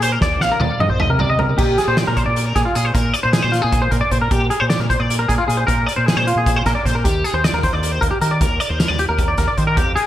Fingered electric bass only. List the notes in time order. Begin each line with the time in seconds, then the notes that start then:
Already playing: A#2
0.22 D#2
0.41 A#1
0.60 D#2
0.79 G2
0.89 A#1
1.09 C3
1.59 A#2
1.88 A#2
2.08 A#2
2.27 A#2
2.56 A#2
2.76 A#2
2.95 A#2
3.25 A#2
3.44 A#2
3.64 A#2
3.92 A#2
4.12 A#2
4.31 A#2
4.62 A#2
4.79 A#2
5.00 A#2
5.29 A#2
5.48 A#2
5.68 A#2
5.98 A#2
6.17 A#2
6.36 A#2
6.66 A#2
6.86 A#2
7.05 D#2
7.33 D#2
7.53 D#2
7.73 D#2
8.02 D#2
8.21 D#3
8.41 D#2
8.70 D#2
8.90 D#2
9.09 D#2
9.38 D#2
9.58 D#3
9.78 F2